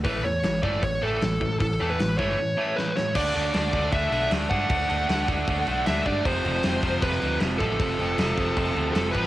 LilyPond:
<<
  \new Staff \with { instrumentName = "Lead electric guitar" } { \time 4/4 \key a \mixolydian \tempo 4 = 155 b'8 cis''4 d''8 cis''8 a'4. | a'8. b'8. cis''4. b'8 cis''8 | d''2 e''4 r8 fis''8~ | fis''2. e''8 d''8 |
c''2 b'4 r8 a'8~ | a'2. a'8 b'8 | }
  \new Staff \with { instrumentName = "Overdriven electric guitar" } { \clef bass \time 4/4 \key a \mixolydian <a, e a>8 <a, e>8 <a, e>8 <a, e a>8 <a, e>8 <a, e a>8 <a, e>8 <a, e>8 | <a, e>8 <a, e a>8 <a, e>8 <a, e a>8 <a, e>8 <a, e a>8 <a, e>8 <a, e>8 | <d a d'>8 <d a d'>8 <d a d'>8 <d a d'>8 <d a d'>8 <d a d'>8 <d a d'>8 <d a d'>8 | <d a d'>8 <d a d'>8 <d a d'>8 <d a d'>8 <d a d'>8 <d a d'>8 <d a d'>8 <d a d'>8 |
<f, c f>8 <f, c f>8 <f, c f>8 <f, c f>8 <f, c f>8 <f, c f>8 <f, c f>8 <f, c f>8 | <f, c f>8 <f, c f>8 <f, c f>8 <f, c f>8 <f, c f>8 <f, c f>8 <f, c f>8 <f, c f>8 | }
  \new Staff \with { instrumentName = "Overdriven electric guitar" } { \clef bass \time 4/4 \key a \mixolydian <a, e a>8 <a, e>8 <a, e>8 <a, e a>8 <a, e>8 <a, e a>8 <a, e>8 <a, e>8 | <a, e>8 <a, e a>8 <a, e>8 <a, e a>8 <a, e>8 <a, e a>8 <a, e>8 <a, e>8 | <d a d'>8 <d a d'>8 <d a d'>8 <d a d'>8 <d a d'>8 <d a d'>8 <d a d'>8 <d a d'>8 | <d a d'>8 <d a d'>8 <d a d'>8 <d a d'>8 <d a d'>8 <d a d'>8 <d a d'>8 <d a d'>8 |
<f, c f>8 <f, c f>8 <f, c f>8 <f, c f>8 <f, c f>8 <f, c f>8 <f, c f>8 <f, c f>8 | <f, c f>8 <f, c f>8 <f, c f>8 <f, c f>8 <f, c f>8 <f, c f>8 <f, c f>8 <f, c f>8 | }
  \new Staff \with { instrumentName = "Picked electric bass" } { \clef bass \time 4/4 \key a \mixolydian a,,8 e,8 a,,8 g,,8 a,,8 a,,8 a,,8 a,,8 | a,,8 e,8 a,,8 g,,8 r2 | d,8 d,8 d,8 d,8 d,8 b,,8 d,8 g,8 | d,8 d,8 d,8 d,8 d,8 b,,8 d,8 g,8 |
f,,8 f,,8 f,,8 f,,8 f,,8 d,8 f,,8 a,,8 | f,,8 f,,8 f,,8 f,,8 f,,8 d,8 f,,8 a,,8 | }
  \new DrumStaff \with { instrumentName = "Drums" } \drummode { \time 4/4 <hho bd>4 <hho sn>8 bd8 <hho bd>4 <hho sn>8 bd8 | <hho bd>4 <hho sn>8 bd8 r4 sn8 sn8 | <cymc bd>8 cymc8 <cymc sn>8 <cymc bd>8 <cymc bd>8 cymc8 <cymc sn>8 <cymc bd>8 | <cymc bd>8 cymc8 <cymc sn>8 <cymc bd>8 <cymc bd>8 cymc8 <cymc sn>8 <cymc bd>8 |
<cymc bd>8 cymc8 <cymc sn>8 <cymc bd>8 <cymc bd>8 cymc8 <cymc sn>8 <cymc bd>8 | <cymc bd>8 cymc8 <cymc sn>8 <cymc bd>8 <cymc bd>8 cymc8 <cymc sn>8 <cymc bd>8 | }
>>